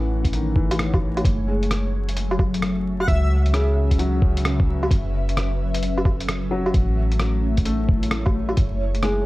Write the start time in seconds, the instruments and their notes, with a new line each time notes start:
Already playing: 808-style bass A1, felt piano E3, ambient pad A3 C#4 C#5 F#5
0.25 kick, closed hi-hat
0.33 felt piano D#3, closed hi-hat
0.56 felt piano E3, kick
0.71 closed hi-hat, low woodblock
0.79 cross-stick, closed hi-hat
0.94 kick, low woodblock
1.17 closed hi-hat, low woodblock
1.25 808-style bass F#1, ambient pad F#3, kick, closed hi-hat
1.48 felt piano G#3
1.63 closed hi-hat
1.71 ambient pad C#4, cross-stick, closed hi-hat
1.81 ambient pad E5
2.09 closed hi-hat
2.17 closed hi-hat
2.31 low woodblock
2.39 kick, low woodblock
2.54 closed hi-hat
2.62 cross-stick, closed hi-hat
3.00 digital synth lead F#5, low woodblock
3.08 808-style bass C#2, ambient pad C#3, felt piano F#3, digital synth lead E5, kick, closed hi-hat
3.23 digital synth lead E5
3.46 closed hi-hat
3.53 felt piano C#3, cross-stick, closed hi-hat
3.91 ambient pad B4, kick, closed hi-hat
3.99 felt piano F#3, closed hi-hat
4.22 kick
4.37 closed hi-hat
4.45 cross-stick, closed hi-hat
4.60 kick
4.83 low woodblock
4.90 808-style bass F#1, ambient pad F#3, kick, closed hi-hat
5.29 closed hi-hat
5.37 cross-stick, closed hi-hat
5.74 closed hi-hat
5.83 closed hi-hat
5.98 low woodblock
6.05 kick, low woodblock
6.20 closed hi-hat
6.28 cross-stick, closed hi-hat
6.51 felt piano F#3
6.66 low woodblock
6.74 808-style bass A1, ambient pad A3, kick, closed hi-hat
6.99 ambient pad C#5
7.11 ambient pad E4, closed hi-hat
7.20 cross-stick, closed hi-hat
7.57 kick, closed hi-hat
7.65 felt piano A3, closed hi-hat
7.89 kick
8.03 closed hi-hat
8.11 cross-stick, closed hi-hat
8.26 kick, low woodblock
8.49 low woodblock
8.57 808-style bass F#1, ambient pad F#3, kick, closed hi-hat
8.85 ambient pad A5
8.95 closed hi-hat
9.03 felt piano G#3, cross-stick, closed hi-hat